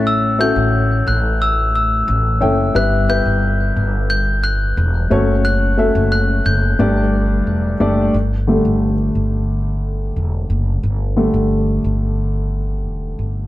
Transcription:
X:1
M:4/4
L:1/16
Q:1/4=89
K:Glyd
V:1 name="Glockenspiel"
e'2 g'4 f'2 e'2 e'4 z2 | f'2 g'6 g'2 f'6 | f'4 f'2 g'8 z2 | z16 |
z16 |]
V:2 name="Upright piano"
[CEAce]2 [CEFAc]8 z4 [CEAcg]2 | [B,EGBe]2 [B,EGBe]8 z4 [A,CFAc]2- | [A,CFAc]2 [A,CFAe]6 [A,DGAd]6 [A,DGAd]2 | z16 |
z16 |]
V:3 name="Upright piano" clef=bass
A,,4 z12 | G,,6 z8 z2 | z8 G,,6 z2 | z2 [D,G,A,]2 z12 |
z2 [D,G,A,]12- [D,G,A,]2 |]
V:4 name="Upright bass" clef=bass
A,,,3 A,,,3 A,,,6 A,,,2 F,,,2 | G,,,3 G,,,3 G,,,6 E,,,2 F,,,2- | F,,,3 F,,,3 F,,,2 G,,,4 E,,,2 F,,,2 | G,,,3 G,,,3 G,,,6 E,,,2 F,,,2 |
G,,,3 G,,,3 G,,,6 E,,,2 G,,,2 |]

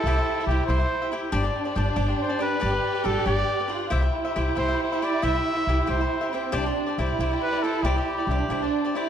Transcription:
X:1
M:6/8
L:1/16
Q:3/8=92
K:C
V:1 name="Cavaquinho"
[EGce] [Gce]2 [Gce] [EGce]2 [EGce] [Gce]2 [Gce] [EGce]2 | [DGcd] [Gcd]2 [Gcd] [DGcd]2 [DGcd] [Gcd]2 [Gcd] [DGcd]2 | [DGBd] [GBd]2 [GBd] [DGBd]2 [DGBd] [GBd]2 [GBd] [DGBd]2 | [EGce] [Gce]2 [Gce] [EGce]2 [EGce] [Gce]2 [Gce] [EGce]2 |
[EGce] [Gce]2 [Gce] [EGce]2 [EGce] [Gce]2 [Gce] [EGce]2 | [EGcd] [Gcd]2 [Gcd] [EGcd]2 [EGcd] [Gcd]2 [Gcd] [EGcd]2 | [EGcd] [Gcd]2 [Gcd] [EGcd]2 [EGcd] [Gcd]2 [Gcd] [EGcd]2 |]
V:2 name="Trumpet"
A4 G2 c4 z2 | z8 c2 B2- | B4 A2 d4 z2 | z6 c2 c2 d2 |
e6 c4 z2 | z8 B2 A2 | G8 z4 |]
V:3 name="Violin section"
E12 | D12 | G8- G2 F2 | E12- |
E8- E2 C2 | D4 E8- | E4 D2 D4 E2 |]
V:4 name="Upright bass" clef=bass
C,,2 z2 C,,2 C,,2 z4 | G,,,2 z2 G,,,2 G,,,2 z4 | G,,,2 z2 G,,,2 G,,,2 z4 | C,,2 z2 C,,2 C,,2 z4 |
C,,2 z2 C,,2 C,,2 z4 | C,,2 z2 C,,2 C,,2 z4 | C,,2 z2 C,,2 C,,2 z4 |]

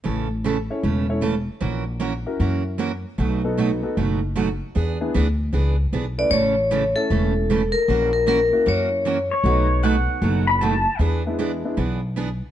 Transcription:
X:1
M:4/4
L:1/16
Q:"Swing" 1/4=153
K:A
V:1 name="Pedal steel guitar"
z16 | z16 | z16 | z16 |
z16 | z12 z2 c2- | c4 f6 b2 a4 | z16 |]
V:2 name="Vibraphone"
z16 | z16 | z16 | z12 z2 d2 |
c6 A8 _B2- | _B2 ^A2 A4 c6 z2 | z16 | z16 |]
V:3 name="Upright piano"
z6 [CEAc]2 z2 [CEAc]2 z4 | z6 [CEF^A]6 z4 | z2 [B,^DFA]4 [B,DFA]2 z8 | z2 [B,DEG]2 z8 z2 [A,CEB]2 |
z6 [A,CEA]6 z4 | z6 [^A,CEF]6 z4 | [A,B,^DF]8- [A,B,DF]2 z6 | z2 [G,B,DE]4 [G,B,DE]2 z8 |]
V:4 name="Steel-string acoustic guitar"
[C,E,A,CA]2 z2 [C,E,A,CA] z3 [C,E,A,CA]2 z2 [C,E,A,CA] z3 | [E,^A,CF^A]2 z2 [E,A,CFA] z3 [E,A,CFA]2 z2 [E,A,CFA] z3 | [B,,F,A,^DF]2 z2 [B,,F,A,DF] z3 [B,,F,A,DF]2 z2 [B,,F,A,DF] z3 | [E,B,DG]2 z2 [E,B,DG] z3 [E,B,DG]2 z2 [E,B,DG] z3 |
[C,E,A,CA]2 z2 [C,E,A,CA] z3 [C,E,A,CA]2 z2 [C,E,A,CA] z3 | [E,^A,CF^A]2 z2 [E,A,CFA] z3 [E,A,CFA]2 z2 [E,A,CFA] z3 | [B,,F,A,^DF]2 z2 [B,,F,A,DF] z3 [B,,F,A,DF]2 z2 [B,,F,A,DF] z3 | [E,B,DG]2 z2 [E,B,DG] z3 [E,B,DG]2 z2 [E,B,DG] z3 |]
V:5 name="Upright bass" clef=bass
A,,,8 E,,,8 | ^A,,,8 F,,8 | B,,,8 F,,,8 | E,,4 D,,4 C,,4 B,,,4 |
A,,,8 E,,,8 | ^A,,,8 F,,8 | B,,,8 F,,,8 | E,,8 B,,,8 |]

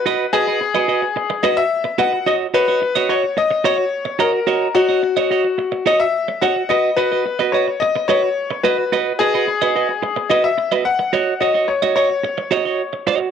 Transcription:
X:1
M:4/4
L:1/16
Q:1/4=108
K:G#m
V:1 name="Grand piano"
B2 G8 d e3 f2 | d2 B4 c2 d2 c4 A2- | A2 F8 d e3 f2 | d2 B4 c2 d2 c4 B2- |
B2 G8 d e3 f2- | f2 d2 c2 c8- c2 |]
V:2 name="Clean electric guitar"
[FBd] z [FBd] [FBd] z [FBd] [FBd] z3 [FBd] z3 [FBd] z | [Fcd] z [Fcd] [Fcd] z [Fcd] [Fcd] z3 [Fcd] z3 [Fcd] z | [Fcd] z [Fcd] [Fcd] z [Fcd] [Fcd] z3 [Fcd] z3 [Fcd] z | [FBd] z [FBd] [FBd] z [FBd] [FBd] z3 [FBd] z3 [FBd] z |
[FBd] z [FBd] [FBd] z [FBd] [FBd] z3 [FBd] z2 [FBd] z2 | [Fcd] z [Fcd] [Fcd] z [Fcd] [Fcd] z3 [Fcd] [Fcd] z2 [Fcd] z |]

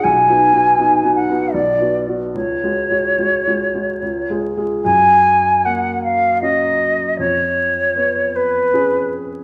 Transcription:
X:1
M:3/4
L:1/8
Q:1/4=78
K:F#
V:1 name="Flute"
g3 f =d z | c4- c z | g2 f e d2 | c3 B2 z |]
V:2 name="Grand piano"
(3B,,, [B,DF] [B,DF] (3[B,DF] [B,DF] [B,DF] (3B,,, [B,F] [B,F] | (3C,, [G,F] [G,F] (3[G,F] [G,F] [G,F] (3C,, [G,EG] [G,EG] | F,,2 A,2 [CF]2 | E,,2 B,2 [CG]2 |]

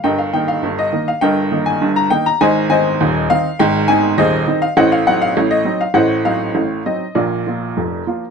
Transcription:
X:1
M:2/4
L:1/16
Q:1/4=101
K:Eb
V:1 name="Upright piano"
[Beg] f g f2 e2 f | [Beg]3 a2 b g b | [cea]2 [cea]4 f2 | g2 a2 [Ace]3 f |
[ce^f] =f ^f =f2 e2 f | [ce^f]2 =f4 e2 | [FBd]8 |]
V:2 name="Upright piano" clef=bass
[G,,,G,,]2 [E,B,E]2 [G,,,G,,]2 [E,B,E]2 | [G,,,G,,]2 [E,B,E]2 [G,,,G,,]2 [E,B,E]2 | [A,,,A,,]2 [E,CE]2 [E,,,E,,]2 [E,CE]2 | [A,,,A,,]2 [E,CE]2 [E,,,E,,]2 [E,CE]2 |
[=A,,,=A,,]2 [^F,CE]2 [A,,,A,,]2 [F,CE]2 | [=A,,,=A,,]2 [^F,CE]2 [A,,,A,,]2 [F,CE]2 | [B,,,B,,]2 [F,B,F]2 [F,,,F,,]2 [F,B,F]2 |]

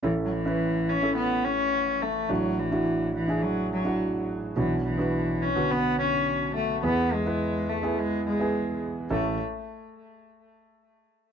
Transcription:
X:1
M:4/4
L:1/16
Q:1/4=106
K:A
V:1 name="Grand piano"
[CEA]3 [CEB]4 [CEA]6- [CEA] z2 | [DEF]3 [DEF]4 [DEG]4 [DEF]4- [DEF] | [B,DF]3 [B,DF]4 [D,B,F]6- [D,B,F] z2 | [B,EG]3 [B,EB]4 [B,EG]4 [B,EG]4- [B,EG] |
[CEA]2 z12 z2 |]
V:2 name="Grand piano" clef=bass
[A,,,A,,]16 | [A,,,A,,]16 | [B,,,B,,]16 | [E,,E,]16 |
A,,,2 z12 z2 |]
V:3 name="Cello" clef=bass
E,3/2 F,/2 E,4 C2 B,2 C4 A,2 | F,2 E,4 E,2 F,2 F,4 z2 | E,2 E,4 C2 B,2 C4 A,2 | B,2 G,4 A,2 G,2 G,4 z2 |
A,2 z12 z2 |]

